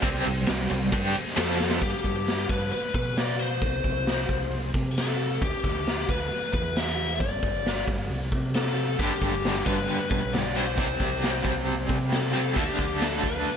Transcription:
0.00 0.24 C2 medium
0.00 0.24 C3 medium
0.00 1.34 G3 medium
0.00 0.24 G3 medium
0.00 1.34 C4 medium
0.00 0.25 C4 loud
0.00 1.35 C5 medium
0.00 kick loud
0.00 ride medium
0.24 0.47 C2 medium
0.24 0.43 C3 medium
0.24 0.43 G3 medium
0.24 ride medium
0.46 0.69 C2 medium
0.46 0.66 C3 medium
0.46 0.66 G3 medium
0.46 snare loud
0.46 ride medium
0.69 0.92 C2 medium
0.69 0.88 C3 medium
0.69 0.88 G3 medium
0.69 ride medium
0.92 1.13 G2 medium
0.92 1.14 G3 medium
0.92 1.15 D4 medium
0.92 1.15 G4 medium
0.92 kick medium
0.92 ride medium
1.15 ride medium
1.27 snare soft
1.36 1.79 F2 medium
1.36 1.81 F3 medium
1.36 1.83 F3 medium
1.36 1.81 C4 medium
1.36 1.82 C4 medium
1.36 1.81 F4 loud
1.36 1.83 A4 medium
1.36 1.82 C5 medium
1.36 snare loud
1.36 ride loud
1.60 snare medium
1.71 snare medium
1.82 1.93 G2 medium
1.82 2.45 G4 medium
1.82 kick loud
1.82 open hi-hat medium
2.04 2.46 G2 medium
2.04 kick medium
2.04 open hi-hat soft
2.27 snare medium
2.27 open hi-hat medium
2.49 2.70 G2 medium
2.49 2.71 B4 medium
2.49 kick medium
2.49 open hi-hat soft
2.72 2.94 B4 medium
2.72 open hi-hat medium
2.94 3.64 B2 medium
2.94 3.18 B4 medium
2.94 kick medium
2.94 open hi-hat soft
3.17 3.40 D5 loud
3.17 snare loud
3.17 open hi-hat medium
3.39 4.70 C5 medium
3.39 open hi-hat soft
3.62 3.83 C2 medium
3.62 kick loud
3.62 open hi-hat medium
3.84 4.26 C2 medium
3.84 kick medium
3.84 open hi-hat soft
4.06 snare medium
4.06 open hi-hat medium
4.29 4.71 C2 medium
4.29 kick medium
4.29 open hi-hat soft
4.52 open hi-hat medium
4.74 5.37 C3 medium
4.74 kick medium
4.74 open hi-hat soft
4.97 5.43 A4 medium
4.97 snare loud
4.97 open hi-hat medium
5.10 snare soft
5.20 open hi-hat medium
5.42 5.52 D2 medium
5.42 6.11 G4 medium
5.42 kick loud
5.42 open hi-hat medium
5.64 6.05 D2 medium
5.64 kick medium
5.64 snare soft
5.64 open hi-hat soft
5.87 snare medium
5.87 open hi-hat medium
6.09 6.29 D2 medium
6.09 6.52 B4 medium
6.09 kick medium
6.09 open hi-hat soft
6.32 open hi-hat medium
6.53 7.22 E2 medium
6.53 6.76 B4 medium
6.53 kick medium
6.53 open hi-hat soft
6.76 7.20 E5 medium
6.76 snare medium
6.76 open hi-hat medium
6.88 snare soft
6.98 open hi-hat soft
7.20 7.41 G1 medium
7.20 7.83 D5 medium
7.20 kick loud
7.20 open hi-hat medium
7.43 7.84 G1 medium
7.43 kick medium
7.43 open hi-hat soft
7.66 snare medium
7.66 open hi-hat medium
7.88 8.08 G1 medium
7.88 kick medium
7.88 open hi-hat soft
8.10 8.30 C2 loud
8.10 open hi-hat medium
8.32 8.95 C3 medium
8.32 kick medium
8.32 open hi-hat medium
8.55 9.00 A4 medium
8.55 snare loud
8.55 open hi-hat medium
8.67 snare soft
8.78 open hi-hat soft
8.99 9.10 G1 medium
8.99 10.54 G2 medium
8.99 10.55 D3 medium
8.99 10.53 G3 medium
8.99 9.68 G4 medium
8.99 kick medium
8.99 open hi-hat medium
9.22 9.63 G1 medium
9.22 kick medium
9.22 open hi-hat soft
9.44 snare loud
9.44 open hi-hat medium
9.66 9.87 G1 loud
9.66 9.87 B4 medium
9.66 kick medium
9.66 open hi-hat soft
9.88 10.09 B4 medium
9.88 open hi-hat medium
10.10 10.78 B1 medium
10.10 10.31 B4 medium
10.10 kick medium
10.10 open hi-hat medium
10.33 10.56 D5 medium
10.33 snare loud
10.33 open hi-hat medium
10.46 snare soft
10.54 10.77 G2 medium
10.54 10.77 D3 medium
10.54 10.76 G3 medium
10.54 11.86 C5 medium
10.54 open hi-hat medium
10.78 10.99 C2 medium
10.78 12.33 C3 medium
10.78 12.34 G3 medium
10.78 12.32 C4 medium
10.78 kick loud
10.78 open hi-hat medium
11.00 11.42 C2 medium
11.00 kick medium
11.00 snare soft
11.00 open hi-hat soft
11.23 snare medium
11.23 open hi-hat medium
11.45 11.87 C2 medium
11.45 kick medium
11.45 open hi-hat soft
11.67 open hi-hat medium
11.89 12.52 C3 medium
11.89 kick medium
11.89 open hi-hat soft
12.12 12.59 A4 medium
12.12 snare loud
12.12 open hi-hat medium
12.24 snare soft
12.33 12.55 C3 medium
12.33 12.56 G3 medium
12.33 12.55 C4 medium
12.33 open hi-hat soft
12.56 12.67 D2 medium
12.56 13.57 D3 medium
12.56 13.57 A3 medium
12.56 13.57 D4 medium
12.56 13.04 G4 medium
12.56 kick loud
12.56 open hi-hat medium
12.79 13.20 D2 medium
12.79 kick medium
12.79 snare soft
12.79 open hi-hat soft
13.01 13.24 A4 medium
13.01 snare medium
13.01 open hi-hat medium
13.23 13.45 D2 medium
13.23 13.57 B4 loud
13.23 kick medium
13.23 open hi-hat soft
13.46 open hi-hat medium

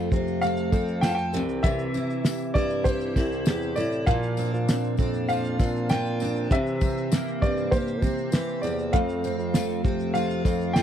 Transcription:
0.00 1.40 F2 medium
0.00 0.41 A3 medium
0.00 1.41 A3 medium
0.00 0.13 C4 medium
0.00 1.02 F4 medium
0.00 0.40 F5 medium
0.12 0.69 C3 medium
0.12 0.73 C4 medium
0.12 kick medium
0.12 shaker soft
0.28 shaker soft
0.42 1.40 A3 medium
0.42 1.03 A4 medium
0.42 1.05 F5 loud
0.42 tambourine soft
0.42 shaker medium
0.57 shaker medium
0.72 1.04 F2 loud
0.72 1.94 C4 medium
0.72 1.95 C4 medium
0.72 kick medium
0.72 tambourine soft
0.88 shaker soft
1.01 1.40 F4 medium
1.01 1.40 A4 medium
1.01 1.09 G5 loud
1.01 snare loud
1.01 tambourine medium
1.01 shaker medium
1.09 1.17 F5 medium
1.15 1.64 G5 medium
1.15 shaker medium
1.33 1.90 C2 loud
1.33 1.63 C3 medium
1.33 1.63 E3 medium
1.33 tambourine medium
1.33 shaker medium
1.49 shaker soft
1.63 4.07 C3 medium
1.63 4.07 E3 medium
1.63 2.57 E5 loud
1.63 kick loud
1.63 tambourine soft
1.63 shaker medium
1.79 shaker medium
1.94 2.55 C4 medium
1.94 2.54 E4 medium
1.94 tambourine soft
1.94 shaker soft
2.10 shaker soft
2.25 3.46 G4 medium
2.25 snare loud
2.25 tambourine medium
2.25 shaker medium
2.40 shaker soft
2.54 3.12 G2 medium
2.54 3.16 C4 medium
2.54 3.15 E4 medium
2.54 2.86 D5 loud
2.54 kick medium
2.54 tambourine soft
2.70 shaker soft
2.84 3.46 G4 medium
2.84 3.72 C5 medium
2.84 kick medium
2.84 tambourine soft
2.84 shaker medium
3.00 shaker medium
3.16 3.44 C2 loud
3.16 3.77 C4 medium
3.16 3.76 E4 medium
3.16 kick medium
3.16 snare soft
3.16 tambourine soft
3.32 shaker soft
3.46 3.75 E2 medium
3.46 4.14 G4 medium
3.46 snare loud
3.46 tambourine medium
3.46 shaker medium
3.62 shaker soft
3.76 4.05 A2 medium
3.76 4.39 C4 medium
3.76 4.14 E4 medium
3.76 4.08 D5 medium
3.76 tambourine medium
3.76 shaker medium
3.92 shaker medium
4.06 4.49 A#2 loud
4.06 6.51 A#2 medium
4.06 5.28 F3 medium
4.06 5.24 F5 medium
4.06 kick loud
4.06 tambourine soft
4.06 shaker medium
4.23 shaker medium
4.37 4.98 C4 medium
4.37 4.98 D4 medium
4.37 tambourine soft
4.37 shaker soft
4.53 4.95 A#2 medium
4.53 shaker soft
4.68 6.82 C4 medium
4.68 5.89 D4 medium
4.68 snare loud
4.68 tambourine loud
4.68 shaker medium
4.84 shaker medium
4.97 5.55 F2 medium
4.97 5.59 C4 medium
4.97 5.59 D4 medium
4.97 kick medium
4.97 tambourine soft
4.97 shaker soft
5.14 shaker soft
5.29 6.51 F3 medium
5.29 5.90 F4 medium
5.29 5.86 F5 medium
5.29 tambourine soft
5.29 shaker medium
5.45 shaker medium
5.59 6.46 A#2 medium
5.59 6.21 C4 medium
5.59 6.21 D4 medium
5.59 kick medium
5.59 snare soft
5.59 tambourine soft
5.76 shaker soft
5.89 6.57 D4 medium
5.89 6.57 F4 medium
5.89 6.52 G5 loud
5.89 snare loud
5.89 tambourine medium
5.89 shaker medium
6.06 shaker soft
6.20 6.81 C4 medium
6.20 6.57 D4 medium
6.20 tambourine medium
6.36 shaker soft
6.50 7.11 C3 loud
6.50 8.94 C3 medium
6.50 8.94 E3 medium
6.50 7.45 E5 medium
6.50 kick loud
6.50 shaker medium
6.67 shaker medium
6.81 7.42 C4 medium
6.81 7.43 C4 medium
6.81 kick medium
6.81 tambourine soft
6.97 shaker soft
7.11 9.00 A#3 medium
7.11 8.32 G4 medium
7.11 snare loud
7.11 tambourine medium
7.11 shaker medium
7.28 shaker medium
7.42 8.04 G2 medium
7.42 8.02 C4 medium
7.42 8.04 C4 medium
7.42 7.73 D5 medium
7.42 kick medium
7.42 shaker soft
7.58 shaker soft
7.71 8.93 A#3 medium
7.71 8.32 G4 medium
7.71 8.59 C5 medium
7.71 kick loud
7.71 tambourine soft
7.71 shaker medium
7.87 shaker medium
8.02 8.30 C3 medium
8.02 8.63 C4 medium
8.02 8.64 C4 medium
8.02 kick medium
8.02 tambourine soft
8.02 shaker medium
8.18 shaker soft
8.32 8.60 E3 medium
8.32 9.00 G4 medium
8.32 snare loud
8.32 tambourine medium
8.32 shaker medium
8.49 shaker soft
8.62 8.91 E2 medium
8.62 9.24 C4 medium
8.62 8.94 D5 medium
8.62 tambourine soft
8.79 shaker soft
8.93 10.83 F2 medium
8.93 9.35 F2 loud
8.93 10.13 A3 medium
8.93 10.10 F5 medium
8.93 kick loud
8.93 shaker medium
9.09 shaker medium
9.24 9.84 C4 medium
9.24 9.85 C4 medium
9.24 tambourine soft
9.38 9.80 F2 medium
9.38 shaker soft
9.54 10.83 A3 medium
9.54 10.75 F4 medium
9.54 snare loud
9.54 tambourine loud
9.54 shaker medium
9.70 shaker medium
9.84 10.41 C3 medium
9.84 10.45 C4 medium
9.84 kick medium
9.84 shaker soft
10.00 shaker soft
10.14 10.83 A3 medium
10.14 10.75 F4 medium
10.14 10.71 F5 medium
10.14 tambourine soft
10.14 shaker medium
10.30 shaker medium
10.45 10.83 F2 loud
10.45 10.83 C4 medium
10.45 kick medium
10.45 snare soft
10.45 tambourine soft
10.61 shaker soft
10.73 10.83 F4 medium
10.73 10.83 G5 loud
10.73 snare loud
10.73 tambourine medium
10.73 shaker medium

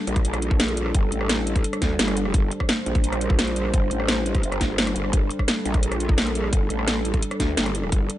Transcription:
0.00 8.18 G3 medium
0.00 8.18 D4 medium
0.00 2.33 A4 medium
0.07 0.93 A#1 loud
0.07 closed hi-hat medium
0.16 kick loud
0.16 closed hi-hat soft
0.25 closed hi-hat medium
0.34 cross-stick medium
0.34 closed hi-hat soft
0.42 closed hi-hat medium
0.51 kick loud
0.60 snare loud
0.60 closed hi-hat loud
0.68 closed hi-hat soft
0.77 closed hi-hat medium
0.86 cross-stick soft
0.95 1.11 G1 medium
0.95 kick loud
0.95 closed hi-hat medium
1.12 1.63 A1 loud
1.12 closed hi-hat medium
1.21 cross-stick medium
1.29 snare loud
1.29 closed hi-hat loud
1.47 closed hi-hat medium
1.56 kick loud
1.56 closed hi-hat soft
1.64 closed hi-hat medium
1.73 cross-stick medium
1.73 closed hi-hat soft
1.82 1.98 D2 loud
1.82 kick medium
1.82 snare soft
1.82 closed hi-hat medium
1.99 2.33 G1 loud
1.99 snare loud
1.99 closed hi-hat loud
2.08 cross-stick medium
2.08 closed hi-hat soft
2.17 closed hi-hat medium
2.25 cross-stick soft
2.34 2.50 G1 loud
2.34 5.12 C5 medium
2.34 kick loud
2.34 closed hi-hat medium
2.51 closed hi-hat medium
2.60 kick medium
2.60 cross-stick soft
2.69 snare loud
2.69 closed hi-hat medium
2.86 3.72 A#1 loud
2.86 closed hi-hat medium
2.95 kick loud
2.95 closed hi-hat soft
3.04 closed hi-hat medium
3.13 cross-stick medium
3.13 closed hi-hat soft
3.21 closed hi-hat medium
3.30 kick loud
3.39 snare loud
3.39 closed hi-hat medium
3.47 closed hi-hat soft
3.56 closed hi-hat medium
3.65 cross-stick soft
3.74 3.90 G1 loud
3.74 kick loud
3.74 closed hi-hat medium
3.91 4.42 A1 loud
3.91 closed hi-hat medium
4.00 cross-stick soft
4.08 snare loud
4.08 closed hi-hat medium
4.26 closed hi-hat medium
4.35 kick loud
4.35 closed hi-hat soft
4.43 4.94 G1 loud
4.43 closed hi-hat medium
4.52 cross-stick medium
4.52 closed hi-hat soft
4.61 kick medium
4.61 snare soft
4.61 closed hi-hat medium
4.78 snare loud
4.78 closed hi-hat medium
4.87 cross-stick medium
4.87 closed hi-hat soft
4.96 5.12 G1 loud
4.96 closed hi-hat medium
5.04 cross-stick soft
5.13 5.29 G1 loud
5.13 7.91 A4 medium
5.13 kick loud
5.13 closed hi-hat medium
5.31 closed hi-hat medium
5.39 kick medium
5.39 cross-stick soft
5.48 snare loud
5.48 closed hi-hat medium
5.65 6.51 A#1 loud
5.65 closed hi-hat medium
5.74 kick loud
5.74 closed hi-hat soft
5.83 closed hi-hat medium
5.92 cross-stick medium
5.92 closed hi-hat soft
6.00 closed hi-hat medium
6.09 kick loud
6.18 snare loud
6.18 closed hi-hat medium
6.27 closed hi-hat soft
6.35 closed hi-hat medium
6.44 cross-stick soft
6.53 6.69 G1 loud
6.53 kick loud
6.53 closed hi-hat medium
6.70 7.21 A1 loud
6.70 closed hi-hat medium
6.79 cross-stick soft
6.88 snare loud
6.88 closed hi-hat medium
7.05 closed hi-hat medium
7.14 kick loud
7.14 closed hi-hat soft
7.22 closed hi-hat medium
7.31 cross-stick medium
7.31 closed hi-hat soft
7.40 7.56 D2 loud
7.40 kick medium
7.40 snare soft
7.40 closed hi-hat medium
7.57 7.91 G1 loud
7.57 snare loud
7.57 closed hi-hat medium
7.66 cross-stick medium
7.66 closed hi-hat soft
7.75 closed hi-hat medium
7.83 cross-stick soft
7.92 8.08 G1 loud
7.92 8.18 D5 medium
7.92 kick loud
7.92 closed hi-hat medium
8.10 closed hi-hat medium

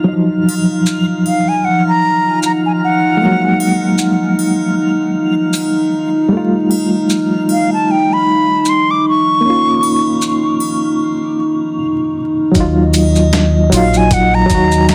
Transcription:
0.00 11.77 F3 medium
0.00 11.77 F6 medium
0.04 3.14 F#3 medium
0.08 3.16 D#4 medium
0.08 12.57 D#4 medium
0.13 3.18 F3 medium
0.49 triangle medium
0.86 maracas medium
1.26 1.50 F5 medium
1.26 triangle soft
1.49 1.66 G#5 medium
1.65 1.86 F#5 medium
1.88 2.39 A#5 loud
2.43 2.52 A#5 medium
2.43 maracas medium
2.66 2.72 G#5 medium
2.84 4.35 F#5 medium
3.17 6.26 G#3 medium
3.21 6.28 A#3 medium
3.26 6.30 F#3 medium
3.60 triangle medium
3.98 maracas medium
4.39 triangle medium
5.53 triangle medium
5.53 maracas medium
6.29 9.38 G3 medium
6.33 9.40 A3 medium
6.37 9.42 F4 medium
6.71 triangle medium
7.10 maracas medium
7.49 7.70 F5 medium
7.49 triangle medium
7.73 7.92 A5 medium
7.91 8.15 G5 medium
8.13 8.71 B5 medium
8.65 8.92 C6 loud
8.65 maracas medium
8.91 9.06 D6 medium
9.09 10.58 C#6 loud
9.41 11.76 A#3 medium
9.45 11.78 C#4 medium
9.50 11.80 F4 medium
9.83 triangle medium
10.22 maracas medium
10.60 triangle medium
12.51 13.69 D#2 loud
12.51 13.66 F#3 medium
12.51 kick loud
12.51 closed hi-hat medium
12.51 maracas soft
12.56 13.68 D#4 medium
12.56 14.95 D#5 medium
12.60 13.70 F4 medium
12.94 closed hi-hat medium
12.94 triangle medium
12.94 maracas medium
13.16 maracas soft
13.33 snare loud
13.33 closed hi-hat medium
13.33 maracas soft
13.70 14.47 A#1 medium
13.70 14.45 F#3 medium
13.70 14.46 D#4 medium
13.70 closed hi-hat medium
13.70 triangle medium
13.70 maracas medium
13.74 14.47 F4 medium
13.74 13.99 F5 medium
13.94 14.15 G#5 loud
13.94 maracas soft
14.11 14.36 F#5 loud
14.11 kick loud
14.11 closed hi-hat medium
14.11 maracas soft
14.35 14.90 A#5 loud
14.46 14.95 F#3 medium
14.46 closed hi-hat medium
14.50 14.95 D#2 loud
14.50 14.95 D#4 medium
14.50 kick medium
14.50 maracas medium
14.55 14.95 F#4 loud
14.72 maracas medium
14.89 14.95 A#5 loud
14.89 snare loud
14.89 closed hi-hat medium
14.89 maracas soft

